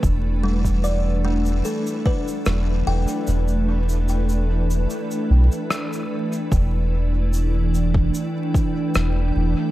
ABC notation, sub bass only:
X:1
M:4/4
L:1/8
Q:1/4=74
K:Em
V:1 name="Sub bass" clef=bass
E,,,4 z2 E,,, E,,, | E,,,4 z B,,, z2 | E,,,4 z2 E,,, E,,, |]